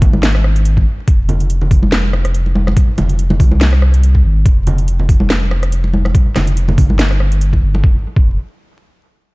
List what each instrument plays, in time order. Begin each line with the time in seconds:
0.02 sub bass G#1, kick, closed hi-hat, low conga
0.13 high conga
0.23 snare, closed hi-hat
0.35 cross-stick
0.44 cross-stick
0.56 closed hi-hat
0.65 closed hi-hat
0.77 kick, muted conga
1.08 sub bass F1, kick, closed hi-hat
1.29 closed hi-hat, low conga
1.40 closed hi-hat
1.50 closed hi-hat
1.62 low conga
1.71 kick, open hi-hat
1.83 high conga
1.92 sub bass F1, snare, closed hi-hat
2.13 cross-stick, muted conga
2.25 cross-stick, closed hi-hat
2.34 closed hi-hat
2.46 muted conga
2.55 high conga
2.67 cross-stick, muted conga
2.77 kick, closed hi-hat
2.98 sub bass F1, closed hi-hat, muted conga, low conga
3.09 closed hi-hat
3.19 closed hi-hat
3.30 muted conga, high conga, low conga
3.40 sub bass C2, kick, open hi-hat, low conga
3.52 high conga
3.61 snare, closed hi-hat
3.73 cross-stick
3.82 cross-stick
3.94 closed hi-hat
4.03 closed hi-hat
4.15 kick, muted conga
4.24 sub bass G#1
4.46 sub bass F1, kick, closed hi-hat
4.67 closed hi-hat, low conga
4.78 closed hi-hat
4.88 closed hi-hat
4.99 low conga
5.09 kick, open hi-hat
5.20 high conga
5.30 sub bass F1, snare, closed hi-hat
5.51 cross-stick, muted conga
5.63 cross-stick, closed hi-hat
5.72 closed hi-hat
5.84 muted conga
5.94 high conga
6.05 cross-stick, muted conga
6.15 kick, closed hi-hat
6.35 sub bass F1, cross-stick, snare, closed hi-hat, muted conga, low conga
6.47 closed hi-hat
6.57 closed hi-hat
6.68 muted conga, high conga, low conga
6.78 sub bass G1, kick, open hi-hat, low conga
6.90 high conga
6.99 snare, closed hi-hat
7.11 cross-stick
7.20 cross-stick
7.32 closed hi-hat
7.41 closed hi-hat
7.53 kick, muted conga
7.62 sub bass G1
7.75 muted conga
7.84 sub bass F1, kick
8.16 sub bass F1, kick